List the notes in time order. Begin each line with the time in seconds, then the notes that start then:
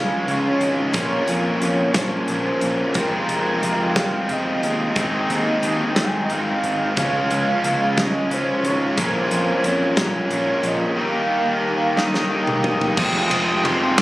Already playing: C#3 F3 G#3 C#4 F4 F5
0.27 C#2 C#3 G#3 C#4 F4, closed hi-hat
0.31 C#5
0.60 G#1, closed hi-hat
0.93 A#1 A#2 F3 A#3 C#4 F4, kick, closed hi-hat
1.00 C#5
1.28 F2, closed hi-hat
1.62 F2, closed hi-hat
1.93 A#1 A#2 F3 A#3 C#4 C5, kick, snare, closed hi-hat
2.28 A#1 A#2 F3 A#3 C#4, closed hi-hat
2.33 F4
2.61 A#1, closed hi-hat
2.94 F1 F2 C3 F3 G#3 C4 F4, kick, closed hi-hat
2.99 A#4
3.27 F1, closed hi-hat
3.62 F1, closed hi-hat
3.95 F2 C3 F3 G#3 C4 F5, kick, snare, closed hi-hat
4.29 F1 F3 G#3 C4 F4 D#5, closed hi-hat
4.62 D#2, closed hi-hat
4.95 G#1 G#2 D#3 G#3 C4 D#4, kick, closed hi-hat
5.01 D#5
5.29 D#2, closed hi-hat
5.63 D#2, closed hi-hat
5.96 G#1 G#2 D#3 G#3 C4 D#4 G#5, kick, snare, closed hi-hat
6.24 D#5
6.29 G#1 G#2 D#3 G#3 C4 F5, closed hi-hat
6.33 D#4
6.64 G#1, closed hi-hat
6.96 C#2 C#3 F3 G#3 C#4 F5, kick, closed hi-hat
7.00 F4
7.31 C#2, closed hi-hat
7.64 C#2, closed hi-hat
7.97 C#3 F3 G#3 C#4 D#5, kick, snare, closed hi-hat
8.30 C#2 C#3 G#3 C#4 F4 C5, closed hi-hat
8.63 G#1 C#5, closed hi-hat
8.97 A#1 A#2 F3 A#3 C#4 C5, kick, closed hi-hat
9.01 F4
9.30 F2, closed hi-hat
9.64 F2 C#5, closed hi-hat
9.96 A#1 A#2 F3 A#3 C#4, kick, snare, closed hi-hat
10.30 A#1 A#2 F3 A#3 C#4 F4, closed hi-hat
10.63 A#1 D#5, closed hi-hat
10.95 D#3 G3 A#3 D#4 G4 F5
11.96 D#3 G3 A#3 D#4 D#6, snare
12.14 snare
12.29 D#3 A#3 D#4 G4
12.47 mid tom
12.64 D#6, mid tom
12.81 floor tom
12.96 F1 F2 C3 F3 G#3 C4 D#6, kick, crash
13.30 F1 F2 C3 F3 G#3 C4, ride
13.63 F1 F2 C3 F3 G#3 C4 C6, ride
13.97 G#1 F2 C3 F3 G#3 C4, snare, ride